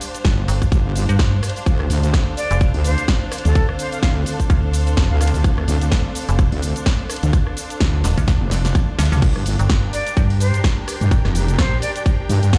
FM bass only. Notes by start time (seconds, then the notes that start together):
0.48 G1
1.09 G2
2.51 F1
4.50 D2
6.29 F1
8.04 D#1
8.18 D2
8.99 D2
9.12 D2
9.59 G1
10.17 G2
11.11 G1
11.59 A#1